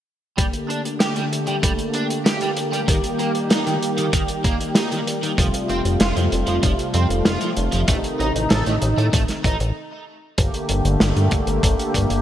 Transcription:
0.38 D3 G3 A3 A#3 G4, kick, closed hi-hat
0.53 closed hi-hat
0.69 D4, closed hi-hat
0.85 closed hi-hat
1.00 G4, snare, closed hi-hat
1.16 G3, closed hi-hat
1.33 closed hi-hat
1.47 G3, closed hi-hat
1.63 G3, kick, closed hi-hat
1.79 closed hi-hat
1.94 D4, closed hi-hat
2.10 closed hi-hat
2.25 G4, snare, closed hi-hat
2.41 G3, closed hi-hat
2.57 closed hi-hat
2.72 G3, closed hi-hat
2.88 D#3 G3, kick, closed hi-hat
3.04 closed hi-hat
3.19 A#3, closed hi-hat
3.35 closed hi-hat
3.50 D#4, snare, closed hi-hat
3.66 D#3, closed hi-hat
3.83 closed hi-hat
3.98 D#3, closed hi-hat
4.13 D#3, kick, closed hi-hat
4.28 closed hi-hat
4.44 A#3, kick, closed hi-hat
4.61 closed hi-hat
4.75 D#4, snare, closed hi-hat
4.91 D#3, closed hi-hat
5.07 closed hi-hat
5.23 D#3, closed hi-hat
5.38 F1 C3 F3 A3 F4, kick, closed hi-hat
5.54 closed hi-hat
5.69 F1 C4, closed hi-hat
5.85 F1, closed hi-hat
6.00 F1 F4, snare, closed hi-hat
6.16 F2 F3, closed hi-hat
6.32 F1, closed hi-hat
6.47 F1 F3, closed hi-hat
6.63 F1 F3, kick, closed hi-hat
6.79 closed hi-hat
6.94 F2 C4, closed hi-hat
7.10 F1, closed hi-hat
7.25 F1 F4, snare, closed hi-hat
7.41 F3, closed hi-hat
7.57 F1, closed hi-hat
7.72 F1 F3, closed hi-hat
7.88 A1 D#3 A3 D#4, kick, closed hi-hat
8.04 closed hi-hat
8.19 A1 D#4, closed hi-hat
8.35 A1, closed hi-hat
8.50 A1 A4, snare, closed hi-hat
8.66 A1 A3, closed hi-hat
8.82 A1, closed hi-hat
8.97 A2 A3, closed hi-hat
9.13 A1 A3, kick, closed hi-hat
9.28 snare, closed hi-hat
9.44 A1 D#4, kick, closed hi-hat
9.60 A1, closed hi-hat
10.38 G1 D3 A3 A#3 G4, kick, closed hi-hat
10.54 closed hi-hat
10.69 G1, closed hi-hat
10.85 G1, closed hi-hat
11.00 G1, snare, closed hi-hat
11.16 G2, closed hi-hat
11.31 G1, kick, closed hi-hat
11.47 G1, closed hi-hat
11.63 G1, kick, closed hi-hat
11.79 closed hi-hat
11.94 G2, kick, closed hi-hat
12.10 G1, closed hi-hat

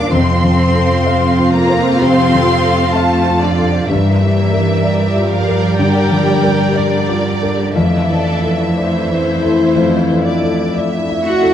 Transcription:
Already playing: A#2 D#3 F3 A#3 F4 G4 A#4 F5 G5 D6
0.11 F2 C3 C4 F4 F5 C6
0.44 F3
0.59 C4
0.75 A4
1.06 C5 F5
1.38 F4
1.53 A#3 A#5
1.70 C5
2.01 C3 A3 C4 C6
2.34 F3
2.64 A4
2.95 A3 A4 F5 A5
3.27 F4
3.43 D3 D5 A5
3.59 A4
3.90 G2 E3 G3 G4 A#4 D5 E5
4.21 G3
4.37 A#3
4.53 A#4
4.84 D5
5.16 F4
5.31 F3 F5
5.48 A#4
5.78 D3 G3 G5
6.11 F3
6.26 A#3
6.43 A#4
6.75 D3 D5
7.09 F4
7.43 A#4
7.75 F2 E3 A3 E4 A4 D5 E5
8.10 E3
8.26 D4
8.43 A4
8.77 C5 D5
9.10 E4
9.26 E4
9.43 A4
9.75 F2
10.09 E3
10.25 D4 D5
10.42 A4
10.75 D5 E5
11.09 E4
11.25 E4 F#4 F#5
11.43 A4

